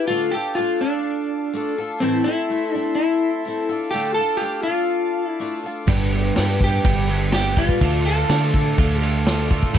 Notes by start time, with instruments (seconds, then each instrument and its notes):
Already playing: accordion D6
0.06 twelve-string acoustic guitar D3, electric slide guitar F4, accordion A4 F5
0.10 twelve-string acoustic guitar A3 D4 F4 A4
0.31 electric slide guitar G4, twelve-string acoustic guitar A4
0.36 twelve-string acoustic guitar D4 F4
0.55 twelve-string acoustic guitar A3 D4, electric slide guitar F4
0.61 twelve-string acoustic guitar F4 A4
0.81 electric slide guitar D4, twelve-string acoustic guitar D4 F4 A4
1.53 twelve-string acoustic guitar A3 D4 F4 A4
1.78 twelve-string acoustic guitar D4 F4 A4
2.00 twelve-string acoustic guitar A2 E3 A3 C4 E4 A4, electric slide guitar C4, accordion E5 C6
2.24 twelve-string acoustic guitar C4 E4 A4, electric slide guitar E4
2.28 twelve-string acoustic guitar A3
2.50 twelve-string acoustic guitar A3 C4 E4 A4
2.72 twelve-string acoustic guitar A3 C4 E4 A4
2.76 electric slide guitar D4
2.95 electric slide guitar E4
3.45 twelve-string acoustic guitar A3 C4 E4 A4
3.69 twelve-string acoustic guitar D4 F4 A4, accordion F5 D6
3.91 twelve-string acoustic guitar D3 A3 D4, electric slide guitar G4
3.95 twelve-string acoustic guitar F4 A4
4.14 electric slide guitar A4, twelve-string acoustic guitar A4
4.20 twelve-string acoustic guitar D4 F4
4.37 electric slide guitar G4
4.41 twelve-string acoustic guitar A3 D4 F4
4.45 twelve-string acoustic guitar A4
4.63 electric slide guitar F4, twelve-string acoustic guitar A4
4.69 twelve-string acoustic guitar D4 F4
5.27 electric slide guitar E4
5.40 twelve-string acoustic guitar A3 D4 F4 A4
5.63 twelve-string acoustic guitar D4 F4 A4
5.87 fingered electric bass G1, clean electric guitar G2 D3 B3, twelve-string acoustic guitar G3 D4 G4 B4, accordion B4 G5, kick, tambourine, crash
6.12 clean electric guitar G3 B3, twelve-string acoustic guitar D4 G4 B4, tambourine, crash
6.36 fingered electric bass G2, twelve-string acoustic guitar G3 D4 G4 B4, clean electric guitar B3, snare, tambourine, crash
6.47 tambourine
6.60 twelve-string acoustic guitar D4 G4 B4, kick, crash
6.64 electric slide guitar G4
6.73 tambourine
6.84 fingered electric bass G1, clean electric guitar G2 D3 G3 B3 D4 G4, kick, crash
7.09 clean electric guitar G3 B3 D4 G4, tambourine, crash
7.32 twelve-string acoustic guitar G3 D4 G4, clean electric guitar B3, electric slide guitar G4, snare, tambourine, crash
7.37 twelve-string acoustic guitar B4
7.56 clean electric guitar G3 B3, electric slide guitar F4, twelve-string acoustic guitar G4 B4, kick, tambourine, crash
7.61 twelve-string acoustic guitar D4
7.69 kick
7.79 fingered electric bass D2, twelve-string acoustic guitar D3, accordion A4 F5 D6, kick, tambourine, crash
7.84 twelve-string acoustic guitar A3 D4 F4 A4
8.04 clean electric guitar A3, electric slide guitar A4, twelve-string acoustic guitar A4, tambourine, crash
8.08 twelve-string acoustic guitar D4 F4
8.28 clean electric guitar D3, fingered electric bass D3, twelve-string acoustic guitar A3 D4 F4, snare, tambourine, crash
8.32 twelve-string acoustic guitar A4
8.39 tambourine
8.54 twelve-string acoustic guitar F4 A4, kick, crash
8.58 twelve-string acoustic guitar D4
8.64 tambourine
8.78 fingered electric bass D2, clean electric guitar D3 A3 D4 F4, kick, crash
9.01 clean electric guitar A3 D4 F4, electric slide guitar G4, tambourine, crash
9.25 clean electric guitar D3, twelve-string acoustic guitar A3 D4 F4 A4, snare, tambourine, crash
9.49 clean electric guitar A3, twelve-string acoustic guitar F4 A4, kick, tambourine, crash
9.53 twelve-string acoustic guitar D4
9.63 kick
9.73 fingered electric bass A1, twelve-string acoustic guitar A2 E3 A3 C4, clean electric guitar E4, accordion E5 C6, kick, tambourine, crash